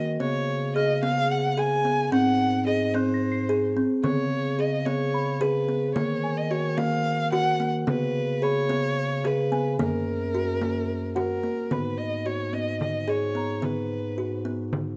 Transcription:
Already playing: bass clarinet D#3
0.20 bass clarinet C#3, kalimba B3, violin C#5
0.76 kalimba G#4, violin D#5, celesta F6
1.03 kalimba B3, violin F5
1.31 violin F#5
1.57 kalimba G#4, violin G#5
1.85 kalimba B3
2.12 bass clarinet G#2, kalimba C4, violin F#5
2.67 kalimba G#4, violin D#5
2.94 kalimba C4, violin C5, celesta F#6
3.14 celesta A#6
3.32 celesta C7
3.49 kalimba G#4
3.77 kalimba C4
4.04 bass clarinet C#3, kalimba B3, violin C#5, celesta C#6, frame drum
4.59 kalimba G#4, violin D#5
4.86 kalimba B3, violin C#5, frame drum
5.14 celesta B5
5.41 kalimba G#4, violin B4, frame drum
5.68 kalimba B3
5.95 bass clarinet D#3, kalimba A#3, violin C#5, frame drum
6.24 celesta G#5
6.37 violin D#5
6.51 kalimba F#4, violin C#5
6.77 kalimba A#3, violin F5, frame drum
7.32 kalimba F#4, violin F#5, frame drum
7.60 kalimba A#3
7.87 bass clarinet C#3, kalimba B3, violin B4, frame drum
8.42 kalimba G#4, violin C#5, celesta B5
8.69 kalimba B3, frame drum
9.24 kalimba G#4, violin B4, frame drum
9.52 kalimba B3, celesta G#5
9.79 bass clarinet F#2, kalimba A#3, violin A#4, frame drum
10.07 frame drum
10.35 kalimba F#4
10.61 kalimba A#3, frame drum
10.89 frame drum
11.15 kalimba F#4, violin A#4, celesta F#5, frame drum
11.43 kalimba A#3
11.71 bass clarinet G#2, kalimba B3, violin B4, celesta B5, frame drum
11.98 violin D#5
12.26 kalimba F#4, violin C#5
12.53 kalimba B3, violin D#5
12.81 violin D#5, frame drum
13.08 kalimba G#4, violin C#5
13.35 kalimba B3, celesta A#5
13.62 kalimba B3, violin B4, frame drum
14.18 kalimba F#4
14.45 kalimba B3
14.73 frame drum

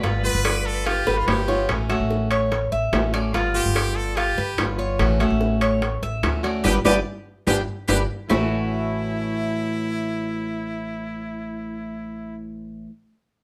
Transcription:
Already playing: violin B4
0.03 upright bass G1, steel-string acoustic guitar G3 B3 F4, cuban tres F4, high bongo, high timbale
0.24 steel-string acoustic guitar B3 F4, trumpet B4, high bongo
0.35 upright bass G1
0.45 cuban tres D5, high bongo, high timbale, claves
0.66 trumpet A4
0.86 cuban tres F4, trumpet G4, muted steel-string acoustic guitar stroke, high bongo, high timbale
1.07 upright bass G1, cuban tres B4, high bongo
1.18 trumpet F4
1.26 upright bass G1, steel-string acoustic guitar G3 B3 F4, trumpet G4, low bongo, high timbale, low timbale, claves
1.48 steel-string acoustic guitar B3 F4, cuban tres C#5, low bongo
1.68 upright bass A1, steel-string acoustic guitar E3 A3 C#4 F#4, high bongo, high timbale, claves
1.89 steel-string acoustic guitar A3 C#4 F#4, cuban tres E5, high bongo, high timbale
2.00 upright bass A1
2.11 high bongo
2.31 cuban tres C#5, high timbale, claves
2.51 muted steel-string acoustic guitar stroke, high bongo, high timbale
2.72 upright bass A1, cuban tres E5, high bongo
2.92 upright bass A1, steel-string acoustic guitar E3 A3 C#4 F#4, high bongo, low bongo, high timbale, low timbale, claves
3.13 steel-string acoustic guitar A3 C#4 F#4, cuban tres D5, high bongo, high timbale
3.33 upright bass G1, steel-string acoustic guitar G3 B3 F4, cuban tres F4, high bongo, high timbale
3.54 steel-string acoustic guitar B3 F4, trumpet G4, high bongo
3.65 upright bass G1
3.75 cuban tres D5, high bongo, high timbale, claves
3.96 trumpet A4
4.17 cuban tres F4, trumpet G4, muted steel-string acoustic guitar stroke, high bongo, high timbale
4.38 upright bass G1, cuban tres B4, high bongo
4.58 upright bass G1, steel-string acoustic guitar G3 B3 F4, high bongo, low bongo, high timbale, claves
4.78 steel-string acoustic guitar B3 F4, cuban tres C#5
4.99 upright bass A1, steel-string acoustic guitar E3 A3 C#4 F#4, high bongo, high timbale, claves
5.19 steel-string acoustic guitar A3 C#4 F#4, cuban tres E5, high bongo, high timbale
5.30 upright bass A1
5.41 high bongo
5.61 cuban tres C#5, high timbale, claves
5.82 muted steel-string acoustic guitar stroke, high bongo, high timbale
6.03 upright bass A1, cuban tres E5, high bongo
6.23 upright bass D2, steel-string acoustic guitar E3 A3 C#4 F#4, high bongo, low bongo, high timbale, claves
6.43 steel-string acoustic guitar A3 C#4 F#4, cuban tres D5, high bongo, high timbale
6.64 upright bass G1, steel-string acoustic guitar G3 B3 D4, trumpet G4, cuban tres G4 B4 D5, low bongo, high timbale, claves
6.85 upright bass G1, steel-string acoustic guitar G3 B3 D4, trumpet G4, cuban tres G4 B4 D5, low bongo, high timbale, claves
7.47 upright bass G1, steel-string acoustic guitar G3 B3 D4, trumpet G4, cuban tres G4 B4 D5, low bongo, high timbale, claves
7.88 upright bass G1, steel-string acoustic guitar G3 B3 D4, trumpet G4, cuban tres G4 B4 D5, low bongo, high timbale, claves
8.29 upright bass A1, steel-string acoustic guitar A2 E3 A3 C#4 F#4, cuban tres A3 E4 F#4, trumpet E4, low bongo, low timbale, claves

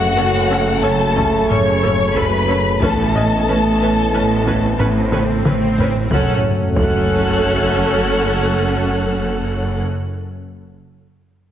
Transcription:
Already playing: sub bass F#1, cello section F#2, trombone section C#3 A3, french horn section C#4 A4, violin section F#4 F#5
0.17 double bass section F#1, cello section F#2, viola section C#4 A4
0.50 viola section C#4 A4, taiko rim
0.83 double bass section F#1, cello section F#2, viola section C#4 A4, violin section A4 A5
1.16 viola section C#4 A4, taiko
1.50 double bass section F#1, cello section F#2, viola section C#4 A4, violin section C#5 C#6, taiko low-mid
1.83 viola section C#4 A4, taiko low-mid
2.15 double bass section F#1, cello section F#2, viola section C#4 A4, violin section B4 B5, taiko
2.49 viola section C#4 A4
2.81 double bass section A1, sub bass A1, cello section A2, trombone section E3 B3, viola section C#4 B4, french horn section C#4 A4, violin section A4 A5, taiko, swell
3.15 viola section C#4 B4, grand piano D#5, taiko low-mid
3.48 double bass section A1, cello section A2, viola section C#4 B4
3.81 viola section C#4 B4
4.14 double bass section A1, cello section A2, viola section C#4 B4
4.46 viola section C#4 B4, taiko
4.79 double bass section A1, cello section A2, viola section C#4 B4, taiko low-mid
5.12 viola section C#4 B4, taiko mid
5.45 double bass section A1, cello section A2, viola section C#4 B4, taiko mid
5.78 viola section C#4 B4, taiko low
6.10 double bass section F#1, sub bass F#1, cello section F#2, trombone section F#3 A3, french horn section C#4 A4, viola section C#4 A4, violin section F#5 F#6, taiko, sub drop
6.76 double bass section F#1, sub bass F#1, cello section F#2, viola section C#4 A4, violin section F#5 F#6, taiko

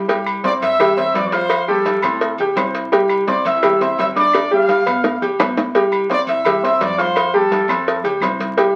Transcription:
Already playing: upright bass C2
0.08 upright piano G3 G4 G5, cowbell, low agogo
0.26 high conga, low agogo, claves
0.44 upright piano C4 C5 C6, trumpet section D5 D6, cowbell, high conga, low timbale
0.62 upright bass G2, trumpet section E5 E6, cowbell, high conga, low agogo
0.79 upright piano G3 G4 G5, cowbell, high conga, low conga, low agogo, claves
0.96 upright piano C4 C5 C6, trumpet section E5 E6, cowbell, high conga, low conga
1.14 upright bass F2, trumpet section D5 D6, cowbell, high conga, low timbale, low agogo
1.27 trumpet section D5
1.31 upright piano F4 F5 F6, trumpet section C5 C6, cowbell, low agogo
1.50 cowbell, high conga, low agogo, claves
1.68 upright piano G3 G4 G5, trumpet section A4 A5, high conga
1.85 cowbell, high conga, low timbale, low agogo
2.02 upright bass A2, upright piano C4 C5 C6, cowbell, low agogo, claves
2.21 cowbell, high conga
2.38 upright bass D2, upright piano G4 G5 G6, high conga, low agogo
2.56 upright bass C2, upright piano C4 C5 C6, cowbell, high conga, low timbale, low agogo, claves
2.75 cowbell
2.92 upright piano G3 G4 G5, cowbell, low agogo
3.09 high conga, low agogo, claves
3.27 upright piano C4 C5 C6, trumpet section D5 D6, cowbell, high conga, low timbale
3.45 upright bass C2, trumpet section E5 E6, cowbell, high conga, low agogo
3.63 upright piano G3 G4 G5, cowbell, high conga, low conga, low agogo, claves
3.80 upright piano C4 C5 C6, trumpet section E5 E6, cowbell, high conga, low conga
3.98 upright bass G1, trumpet section E5 E6, cowbell, high conga, low timbale, low agogo
4.15 upright piano D4 D5 D6, trumpet section D5 D6, cowbell, high conga, low agogo
4.33 cowbell, high bongo, low agogo, claves
4.51 upright piano G3 G4 G5, trumpet section F5, high conga
4.68 cowbell, high conga, low timbale, low agogo
4.86 upright bass G2, upright piano B3 B4 B5, cowbell, low agogo, claves
5.04 cowbell, low bongo, high conga
5.21 upright bass D2, upright piano G4 G5 G6, high conga, low agogo
5.39 upright bass C2, upright piano B3 B4 B5, cowbell, low bongo, high conga, low timbale, low agogo, claves
5.57 cowbell, low bongo
5.75 upright piano G3 G4 G5, cowbell, high conga, low agogo
5.92 high conga, low agogo, claves
6.10 upright piano C4 C5 C6, trumpet section D5 D6, cowbell, high conga, low timbale
6.27 upright bass C2, trumpet section E5 E6, cowbell, high conga, low agogo
6.45 upright piano G3 G4 G5, cowbell, high conga, low conga, low agogo, claves
6.63 upright piano C4 C5 C6, trumpet section E5 E6, cowbell
6.80 upright bass F2, trumpet section D5 D6, cowbell, high conga, low timbale, low agogo
6.98 upright piano F4 F5 F6, trumpet section C5 C6, cowbell, high conga, low agogo
7.16 cowbell, high conga, low agogo, claves
7.33 upright piano G3 G4 G5, trumpet section A4 A5, high conga
7.52 cowbell, high conga, low timbale, low agogo
7.68 upright bass F2, upright piano C4 C5 C6, cowbell, low agogo, claves
7.87 cowbell, high conga
8.04 upright bass D2, upright piano G4 G5 G6, high conga, low agogo
8.21 upright bass C2, upright piano C4 C5 C6, cowbell, high conga, low timbale, low agogo, claves
8.40 cowbell, high conga
8.57 upright piano G3 G4 G5, cowbell, low agogo

